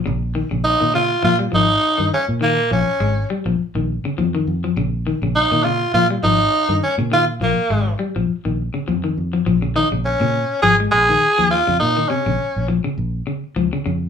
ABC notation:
X:1
M:4/4
L:1/16
Q:"Swing 16ths" 1/4=102
K:Bbdor
V:1 name="Tenor saxophone"
z4 E2 F2 F2 E4 D2 | B,2 D4 z8 z2 | z4 E2 F2 F2 E4 D2 | F2 B,4 z8 z2 |
z2 E2 D4 A2 A4 F2 | E2 D4 z8 z2 |]
V:2 name="Clean electric guitar" clef=bass
D,2 E, D,2 E, D,2 F, G, F,2 z E,2 z | E,2 F,2 A,2 G, F,2 E,2 D, F, E,2 F, | D,2 E, D,2 E, D,2 F, G, F,2 z E,2 D, | E,2 F,2 A,2 G, F,2 E,2 D, F, E,2 F, |
F, D, E, D,2 D,2 z F, A,2 E,2 F,2 D,- | D, E, C, D,2 z F, D,2 z D,2 F, D, D,2 |]
V:3 name="Fingered electric bass" clef=bass
B,,,3 B,,,2 B,,3 B,,2 A,,,2 z G,, z B,,- | B,,2 B,,, z A,,,2 z B,,, z B,,,2 z F,,2 F,,2 | B,,,3 B,,,2 B,,3 B,,2 A,,,2 z G,, z B,,- | B,,2 B,,, z A,,,2 z B,,, z B,,,2 z F,,2 F,,2 |
B,,,3 B,,,2 B,,2 z A,,,2 B,,,2 z E,,2 F,, | B,,2 z B,,, z B,,,2 z B,,,2 z2 D,, z F,,2 |]